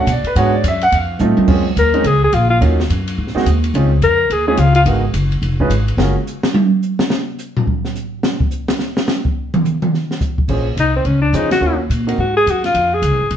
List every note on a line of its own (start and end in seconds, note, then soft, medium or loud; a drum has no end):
0.06 0.23 B2 medium
0.06 kick soft
0.06 hi-hat pedal medium
0.06 ride medium
0.12 0.26 D5 medium
0.24 0.36 B4 medium
0.24 muted upright bass stroke soft
0.24 ride soft
0.35 0.63 G#2 medium
0.35 0.51 G#3 medium
0.35 0.51 B3 medium
0.35 0.51 D4 medium
0.35 0.51 F#4 medium
0.35 0.53 C#5 medium
0.35 kick soft
0.35 ride medium
0.54 0.64 D5 medium
0.63 0.91 F#2 medium
0.63 kick soft
0.63 hi-hat pedal medium
0.63 ride medium
0.68 0.82 E5 medium
0.81 0.92 F#5 loud
0.81 ride soft
0.92 1.19 F2 medium
0.92 1.20 F5 medium
0.92 kick soft
0.92 ride medium
1.19 1.36 A2 medium
1.19 1.48 A3 medium
1.19 1.46 C4 medium
1.19 1.48 D#4 medium
1.19 1.46 F4 medium
1.19 hi-hat pedal medium
1.19 high tom soft
1.37 muted upright bass stroke soft
1.37 high tom medium
1.47 1.75 F2 medium
1.47 1.63 G#3 medium
1.47 1.63 A#3 medium
1.47 1.63 C4 medium
1.47 1.63 C#4 medium
1.47 1.63 F4 medium
1.47 kick medium
1.47 crash medium
1.76 2.03 D#2 medium
1.76 2.08 A#4 medium
1.76 kick soft
1.76 hi-hat pedal soft
1.76 ride medium
1.94 2.03 G#3 medium
1.94 2.03 A#3 medium
1.94 2.03 C4 medium
1.94 2.04 C#4 medium
1.94 2.03 D#4 medium
1.94 ride soft
2.04 2.31 C#2 medium
2.04 2.23 G#4 medium
2.04 kick soft
2.04 ride medium
2.24 2.36 G#4 medium
2.32 2.60 A#1 medium
2.32 2.49 F4 medium
2.32 kick soft
2.32 hi-hat pedal medium
2.32 ride medium
2.50 2.60 F4 medium
2.61 2.88 D#2 medium
2.61 2.76 F#3 medium
2.61 2.76 A#3 medium
2.61 2.76 C#4 medium
2.61 2.77 D#4 medium
2.61 2.77 F4 medium
2.61 kick soft
2.61 ride medium
2.80 snare medium
2.90 3.17 F#2 medium
2.90 kick soft
2.90 hi-hat pedal soft
2.90 ride medium
3.08 ride medium
3.18 3.34 G#2 medium
3.18 kick soft
3.27 snare soft
3.35 3.45 G#3 medium
3.35 3.44 A#3 medium
3.35 3.44 C4 medium
3.35 3.44 D#4 medium
3.35 3.45 F#4 medium
3.35 muted upright bass stroke soft
3.35 snare soft
3.45 3.73 D#2 medium
3.45 kick soft
3.45 hi-hat pedal medium
3.45 ride medium
3.64 ride soft
3.74 4.01 C#2 medium
3.74 3.90 G#3 medium
3.74 3.90 C4 medium
3.74 3.90 C#4 medium
3.74 3.90 D#4 medium
3.74 3.90 F4 medium
3.74 kick soft
3.74 ride medium
4.02 4.29 F2 medium
4.02 4.34 A#4 loud
4.02 kick soft
4.02 hi-hat pedal medium
4.02 ride medium
4.30 4.57 D#2 medium
4.30 4.47 G#4 medium
4.30 kick soft
4.30 ride medium
4.47 4.57 G#3 medium
4.47 4.57 C4 medium
4.47 4.57 C#4 medium
4.47 4.57 D#4 medium
4.47 4.57 F4 medium
4.47 4.61 G#4 medium
4.57 4.85 C#2 medium
4.57 4.75 F4 medium
4.57 kick soft
4.57 hi-hat pedal soft
4.57 ride medium
4.75 4.82 F4 medium
4.75 ride medium
4.86 5.13 G#1 medium
4.86 5.01 G#3 medium
4.86 5.01 B3 medium
4.86 5.02 D#4 medium
4.86 5.02 F#4 medium
4.86 5.02 A#4 medium
4.86 ride medium
5.14 5.41 F#1 medium
5.14 kick soft
5.14 hi-hat pedal medium
5.14 ride medium
5.32 ride soft
5.42 5.69 F1 medium
5.42 kick soft
5.42 ride medium
5.60 5.70 G#3 medium
5.60 5.69 C#4 medium
5.60 5.70 D#4 medium
5.60 5.70 F4 medium
5.60 5.70 B4 medium
5.60 kick medium
5.70 5.97 G#1 medium
5.70 hi-hat pedal soft
5.70 ride medium
5.88 ride soft
5.97 6.15 F#1 medium
5.97 6.14 G#3 medium
5.97 6.14 C#4 medium
5.97 6.14 F4 medium
5.97 6.14 F#4 medium
5.97 6.14 A#4 medium
5.97 snare loud
6.27 hi-hat pedal medium
6.43 snare loud
6.54 high tom loud
6.82 hi-hat pedal medium
6.99 snare loud
7.10 snare loud
7.39 hi-hat pedal medium
7.57 floor tom medium
7.67 kick medium
7.85 snare soft
7.95 hi-hat pedal medium
8.23 snare loud
8.40 kick medium
8.51 hi-hat pedal medium
8.68 snare medium
8.79 snare medium
8.97 snare loud
9.08 snare medium
9.08 hi-hat pedal soft
9.25 kick medium
9.54 mid tom loud
9.65 hi-hat pedal medium
9.65 mid tom soft
9.82 mid tom medium
9.94 snare soft
10.11 snare soft
10.21 kick medium
10.21 hi-hat pedal medium
10.38 kick medium
10.48 10.76 A#1 medium
10.48 10.65 C#4 medium
10.48 10.65 F4 soft
10.48 10.65 G#4 medium
10.48 10.65 C5 medium
10.48 kick medium
10.48 crash medium
10.77 11.04 C2 medium
10.77 10.95 D#4 medium
10.77 kick soft
10.77 hi-hat pedal soft
10.77 ride medium
10.96 11.08 C4 medium
11.05 11.32 C#2 medium
11.05 11.21 C#4 medium
11.05 kick soft
11.05 ride soft
11.22 11.36 D4 medium
11.33 11.60 F2 medium
11.33 11.49 C#4 medium
11.33 11.51 D#4 medium
11.33 11.49 F4 medium
11.33 11.49 G#4 medium
11.33 11.50 C5 medium
11.33 kick soft
11.33 hi-hat pedal medium
11.33 ride medium
11.51 11.78 F#4 medium
11.51 snare medium
11.51 ride medium
11.61 11.88 D#2 medium
11.61 11.77 C#4 medium
11.61 11.77 F4 medium
11.61 11.77 F#4 medium
11.61 11.77 A#4 medium
11.90 12.17 A#2 medium
11.90 kick soft
11.90 hi-hat pedal medium
11.90 ride medium
12.07 12.17 C4 medium
12.07 12.17 D#4 medium
12.07 12.17 F#4 medium
12.07 12.17 A#4 medium
12.07 ride medium
12.18 12.45 G#2 medium
12.18 12.35 F#4 medium
12.18 kick soft
12.37 12.52 G#4 loud
12.46 12.74 F#2 medium
12.46 kick soft
12.46 hi-hat pedal soft
12.46 ride medium
12.51 12.65 F#4 medium
12.64 12.96 F4 medium
12.64 snare soft
12.64 ride soft
12.74 13.01 F2 medium
12.74 kick soft
12.74 ride medium
12.94 13.32 G#4 medium
13.02 13.11 C#2 medium
13.02 kick soft
13.02 hi-hat pedal medium
13.02 ride medium
13.11 13.21 C2 soft
13.21 13.30 G#1 medium
13.31 13.37 C2 medium
13.31 kick soft
13.31 ride medium